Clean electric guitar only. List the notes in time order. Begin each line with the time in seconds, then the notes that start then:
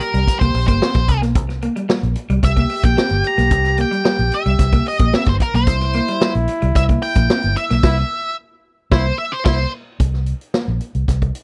0.01 muted clean electric guitar stroke
0.14 G3
0.42 A#3
0.55 muted clean electric guitar stroke
0.69 A#3
0.82 C4
1.08 muted clean electric guitar stroke
1.22 A#3
1.49 muted clean electric guitar stroke
1.63 A#3
1.76 G3
1.89 G3
2.16 muted clean electric guitar stroke
2.30 G3
2.56 A#3
2.70 muted clean electric guitar stroke
2.84 A#3
2.97 C4
3.24 muted clean electric guitar stroke
3.38 A#3
3.64 muted clean electric guitar stroke
3.78 A#3
3.91 G3
4.05 G3
4.32 muted clean electric guitar stroke
4.46 G3
4.73 A#3
4.87 muted clean electric guitar stroke
5.00 A#3
5.14 C4
5.41 muted clean electric guitar stroke
5.55 A#3
5.82 muted clean electric guitar stroke
5.95 A#3
6.08 G3
6.22 G3
6.49 muted clean electric guitar stroke
6.62 G3
6.89 A#3
7.03 muted clean electric guitar stroke
7.16 A#3
7.30 C4
7.57 muted clean electric guitar stroke
7.71 A#3